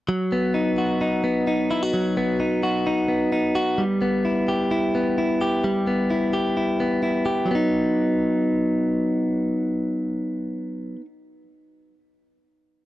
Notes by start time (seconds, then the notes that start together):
0.09 F#3
0.32 B3
0.54 D#4
0.78 F#4
1.01 D#4
1.24 B3
1.47 D#4
1.71 E4
1.83 F#4
1.94 F#3
2.17 B3
2.40 D#4
2.63 F#4
2.87 D#4
3.08 B3
3.32 D#4
3.55 F#4
3.78 G3
4.02 B3
4.25 E4
4.48 G4
4.71 E4
4.95 B3
5.18 E4
5.41 G4
5.64 G3
5.87 B3
6.10 E4
6.33 G4
6.57 E4
6.80 B3
7.03 E4
7.26 G4
7.46 F#3
7.51 B3
7.55 D#4